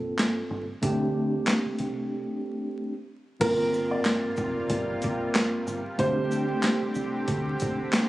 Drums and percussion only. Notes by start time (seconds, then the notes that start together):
0.19 snare, clap, closed hi-hat
0.83 kick, closed hi-hat
1.47 snare, clap, closed hi-hat
1.79 closed hi-hat
3.41 kick, closed hi-hat, crash
3.73 shaker
4.05 snare, clap, closed hi-hat
4.37 kick, shaker
4.70 kick, closed hi-hat
5.02 kick, closed hi-hat, shaker
5.35 snare, clap, closed hi-hat
5.67 shaker
5.99 kick, closed hi-hat
6.31 shaker
6.63 snare, clap, closed hi-hat
6.95 shaker
7.28 kick, closed hi-hat
7.60 kick, closed hi-hat, shaker
7.93 snare, clap, closed hi-hat